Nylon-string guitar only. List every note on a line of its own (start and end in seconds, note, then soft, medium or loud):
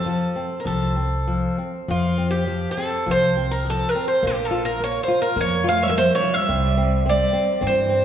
0.06 0.35 F3 medium
0.36 0.65 C4 soft
0.65 0.95 F3 medium
0.96 1.26 C4 soft
1.28 1.57 F3 soft
1.58 1.87 C4 soft
1.88 2.46 F3 medium
2.18 2.47 C4 soft
2.47 2.76 F3 soft
2.78 3.06 C4 medium
3.06 3.35 F3 medium
3.37 3.65 C4 medium
3.65 3.93 F3 soft
3.95 4.22 C4 soft
4.23 4.79 A#3 medium
4.51 4.79 F4 medium
4.80 5.08 A#3 medium
5.08 5.35 F4 medium
5.37 5.63 A#3 medium
5.64 5.91 F4 medium
5.91 6.19 A#3 soft
6.21 6.48 F4 medium
6.49 6.76 C4 medium
6.77 7.05 C4 soft
7.06 7.32 C4 medium
7.33 7.60 C4 medium
7.61 7.88 C4 medium
7.89 8.05 C4 medium